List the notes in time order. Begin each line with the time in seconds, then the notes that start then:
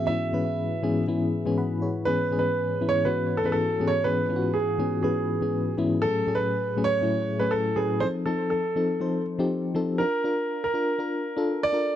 Already playing: G#2 E3 B3 C#4 F#4 G#4
0.07 G#2 E3 B3 C#4 E4 E5
0.33 G#2 E3 B3 C#4 B4
0.83 G#2 E3 B3 C#4 G#4
1.07 G#2 E3 B3 C#4 E4
1.46 G#2 E3 B3 C#4 G#4
1.58 F#5 B5
1.82 G#4 C#5
2.05 G#2 E3 B3 C#4 G#4 B4
2.31 G#2 E3 B3 C#4 G#4
2.39 B4
2.81 G#2 E3 B3 C#4 E4
2.89 C#5
3.05 G#2 E3 B3 C#4 F#4 B4
3.37 A4
3.44 G#2 E3 B3 C#4 G#4 B4
3.52 A4
3.80 G#2 E3 B3 C#4 G#4
3.87 C#5
4.04 G#2 E3 B3 C#4 G#4 B4
4.29 G#2 E3 B3 C#4 F4
4.36 F#4
4.54 G#4
4.78 G#2 E3 B3 C#4 G#4
5.03 G#2 E3 B3 C#4 G#4 B4
5.41 G#2 E3 B3 C#4 G#4
5.77 G#2 E3 B3 C#4 E4
6.02 A2 F#3 A3 C#4 G#4 A4
6.27 A2 F#3 A3 C#4 G#4
6.35 B4
6.77 A2 F#3 A3 C#4 G#4
6.84 C#5
7.01 A2 F#3 A3 C#4 E4
7.39 A2 F#3 A3 C#4 G#4 B4
7.51 A4
7.76 A2 F#3 A3 C#4 G#4 B4
8.00 F3 C4 D#4 A4 C5
8.26 F3 C4 D#4 A4
8.50 A4
8.76 F3 C4 D#4 A4
9.00 F3 C4 D#4 C5
9.39 F3 C4 D#4 G4
9.75 F3 C4 D#4 A4
9.98 D4 F4 A#4
10.24 D4 F4 A#4
10.64 A#4
10.74 D4 F4 A#4
10.98 D4 F4 A#4
11.37 D4 F4 A4
11.63 D5
11.73 D4 F4 A#4